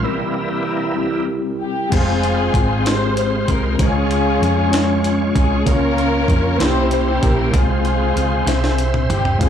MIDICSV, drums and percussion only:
0, 0, Header, 1, 2, 480
1, 0, Start_track
1, 0, Key_signature, -4, "minor"
1, 0, Tempo, 624350
1, 31, Time_signature, 6, 3, 24, 8
1, 7297, End_track
2, 0, Start_track
2, 0, Title_t, "Drums"
2, 1476, Note_on_c, 9, 49, 79
2, 1477, Note_on_c, 9, 36, 81
2, 1477, Note_on_c, 9, 42, 76
2, 1553, Note_off_c, 9, 49, 0
2, 1554, Note_off_c, 9, 36, 0
2, 1554, Note_off_c, 9, 42, 0
2, 1718, Note_on_c, 9, 42, 39
2, 1795, Note_off_c, 9, 42, 0
2, 1953, Note_on_c, 9, 36, 92
2, 1959, Note_on_c, 9, 42, 54
2, 2030, Note_off_c, 9, 36, 0
2, 2036, Note_off_c, 9, 42, 0
2, 2199, Note_on_c, 9, 42, 80
2, 2207, Note_on_c, 9, 38, 86
2, 2276, Note_off_c, 9, 42, 0
2, 2284, Note_off_c, 9, 38, 0
2, 2437, Note_on_c, 9, 42, 53
2, 2514, Note_off_c, 9, 42, 0
2, 2677, Note_on_c, 9, 42, 56
2, 2678, Note_on_c, 9, 36, 82
2, 2754, Note_off_c, 9, 42, 0
2, 2755, Note_off_c, 9, 36, 0
2, 2916, Note_on_c, 9, 36, 86
2, 2916, Note_on_c, 9, 42, 82
2, 2993, Note_off_c, 9, 36, 0
2, 2993, Note_off_c, 9, 42, 0
2, 3158, Note_on_c, 9, 42, 41
2, 3235, Note_off_c, 9, 42, 0
2, 3405, Note_on_c, 9, 42, 50
2, 3482, Note_off_c, 9, 42, 0
2, 3637, Note_on_c, 9, 42, 90
2, 3645, Note_on_c, 9, 38, 96
2, 3714, Note_off_c, 9, 42, 0
2, 3722, Note_off_c, 9, 38, 0
2, 3878, Note_on_c, 9, 42, 48
2, 3955, Note_off_c, 9, 42, 0
2, 4117, Note_on_c, 9, 36, 88
2, 4118, Note_on_c, 9, 42, 57
2, 4194, Note_off_c, 9, 36, 0
2, 4195, Note_off_c, 9, 42, 0
2, 4355, Note_on_c, 9, 36, 97
2, 4357, Note_on_c, 9, 42, 89
2, 4432, Note_off_c, 9, 36, 0
2, 4433, Note_off_c, 9, 42, 0
2, 4599, Note_on_c, 9, 42, 39
2, 4676, Note_off_c, 9, 42, 0
2, 4831, Note_on_c, 9, 36, 85
2, 4840, Note_on_c, 9, 42, 49
2, 4907, Note_off_c, 9, 36, 0
2, 4917, Note_off_c, 9, 42, 0
2, 5076, Note_on_c, 9, 42, 75
2, 5084, Note_on_c, 9, 38, 100
2, 5153, Note_off_c, 9, 42, 0
2, 5161, Note_off_c, 9, 38, 0
2, 5313, Note_on_c, 9, 42, 54
2, 5390, Note_off_c, 9, 42, 0
2, 5556, Note_on_c, 9, 36, 84
2, 5556, Note_on_c, 9, 42, 59
2, 5633, Note_off_c, 9, 36, 0
2, 5633, Note_off_c, 9, 42, 0
2, 5794, Note_on_c, 9, 36, 98
2, 5794, Note_on_c, 9, 42, 80
2, 5871, Note_off_c, 9, 36, 0
2, 5871, Note_off_c, 9, 42, 0
2, 6034, Note_on_c, 9, 42, 40
2, 6111, Note_off_c, 9, 42, 0
2, 6280, Note_on_c, 9, 42, 51
2, 6357, Note_off_c, 9, 42, 0
2, 6515, Note_on_c, 9, 42, 80
2, 6520, Note_on_c, 9, 38, 49
2, 6591, Note_off_c, 9, 42, 0
2, 6597, Note_off_c, 9, 38, 0
2, 6641, Note_on_c, 9, 38, 57
2, 6718, Note_off_c, 9, 38, 0
2, 6754, Note_on_c, 9, 42, 52
2, 6830, Note_off_c, 9, 42, 0
2, 6873, Note_on_c, 9, 47, 60
2, 6950, Note_off_c, 9, 47, 0
2, 6995, Note_on_c, 9, 45, 101
2, 6998, Note_on_c, 9, 42, 50
2, 7072, Note_off_c, 9, 45, 0
2, 7075, Note_off_c, 9, 42, 0
2, 7113, Note_on_c, 9, 43, 75
2, 7190, Note_off_c, 9, 43, 0
2, 7233, Note_on_c, 9, 36, 83
2, 7234, Note_on_c, 9, 42, 88
2, 7297, Note_off_c, 9, 36, 0
2, 7297, Note_off_c, 9, 42, 0
2, 7297, End_track
0, 0, End_of_file